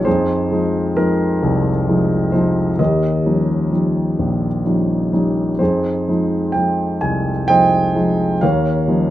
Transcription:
0.05 2.75 F2 medium
0.05 0.51 D#4 medium
0.05 1.38 G#4 medium
0.05 0.92 C5 medium
0.51 0.94 F3 soft
0.51 0.95 G#3 soft
0.51 0.95 D#4 medium
0.96 1.69 F3 soft
0.96 1.69 G#3 soft
0.96 1.69 D#4 soft
0.96 2.29 A#4 medium
1.43 2.76 C2 medium
1.88 2.32 F3 soft
1.88 2.32 G#3 soft
1.88 2.32 D#4 soft
2.32 2.70 F3 medium
2.32 2.70 G#3 soft
2.32 2.71 D#4 medium
2.32 2.80 C5 medium
2.79 5.56 D#2 medium
2.79 4.62 G4 soft
2.79 4.62 A#4 soft
2.79 4.61 D#5 medium
3.26 3.70 F3 soft
3.26 3.71 G3 soft
3.26 3.71 C#4 soft
3.26 3.71 D#4 soft
3.72 4.46 F3 soft
3.72 4.47 G3 soft
3.72 4.46 C#4 soft
3.72 4.47 D#4 soft
4.19 5.56 A#1 medium
4.65 5.11 F3 soft
4.65 5.12 G3 soft
4.65 5.12 C#4 soft
4.65 5.12 D#4 soft
5.13 5.51 F3 soft
5.13 5.51 G3 soft
5.13 5.51 C#4 soft
5.13 5.51 D#4 soft
5.59 8.38 F2 medium
5.59 6.08 D#4 soft
5.59 6.98 G#4 soft
5.59 6.51 C5 medium
6.08 6.54 F3 soft
6.08 6.54 G#3 soft
6.08 6.55 D#4 soft
6.52 7.30 F3 soft
6.52 7.30 G#3 soft
6.52 7.31 D#4 soft
6.52 6.97 G5 medium
7.01 8.38 C2 medium
7.01 7.45 G#5 medium
7.48 7.94 F3 soft
7.48 7.94 G#3 soft
7.48 7.95 D#4 soft
7.48 8.38 C5 medium
7.48 8.38 D#5 medium
7.48 8.44 G5 loud
7.95 8.32 F3 soft
7.95 8.32 G#3 soft
7.95 8.33 D#4 soft
8.41 9.10 D#2 medium
8.41 9.10 A#4 medium
8.41 9.10 C#5 medium
8.41 9.10 F5 medium
8.88 9.10 F3 soft
8.88 9.10 G3 soft
8.88 9.10 C#4 soft
8.88 9.10 D#4 soft

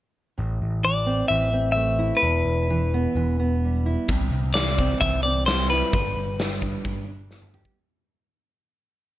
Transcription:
0.38 0.58 A1 medium
0.38 1.53 A2 medium
0.62 1.21 A1 medium
0.84 1.29 E3 medium
0.84 1.28 D5 medium
1.06 1.52 C4 medium
1.28 2.10 A1 medium
1.28 2.70 E3 medium
1.28 1.71 E5 medium
1.53 2.23 C4 medium
1.72 2.23 A3 medium
1.72 2.17 E5 medium
1.99 3.85 E4 medium
2.17 3.55 B4 medium
2.22 2.43 E1 medium
2.22 3.39 E2 medium
2.45 3.05 E1 medium
2.70 3.15 E3 medium
2.94 3.38 B3 medium
3.15 3.95 E1 medium
3.15 4.09 E3 medium
3.40 4.09 B3 medium
3.64 5.48 G3 soft
3.86 4.09 E4 medium
4.08 4.28 C2 medium
4.08 5.25 C3 medium
4.08 kick medium
4.08 open hi-hat soft
4.31 4.91 C2 medium
4.54 5.02 E3 medium
4.54 4.97 D5 medium
4.54 snare medium
4.54 open hi-hat soft
4.79 5.23 C4 medium
4.79 kick medium
5.01 5.80 C2 medium
5.01 5.94 E3 medium
5.01 5.22 E5 medium
5.01 kick medium
5.01 open hi-hat soft
5.23 5.94 C4 medium
5.23 5.46 D5 medium
5.46 6.39 G3 medium
5.46 5.68 C5 medium
5.46 snare medium
5.46 open hi-hat soft
5.70 5.94 E4 medium
5.70 7.50 B4 medium
5.93 6.13 G1 medium
5.93 7.09 G2 medium
5.93 kick medium
5.93 open hi-hat soft
6.16 6.75 G1 medium
6.39 6.84 G3 medium
6.39 snare medium
6.39 open hi-hat soft
6.62 7.07 D4 medium
6.62 kick medium
6.85 7.64 G1 medium
6.85 7.77 G3 medium
6.85 kick medium
6.85 open hi-hat soft
7.08 7.77 D4 soft
7.31 7.78 B3 soft
7.31 snare soft
7.42 mid tom soft
7.54 7.77 G4 medium
7.54 mid tom medium
7.65 kick medium

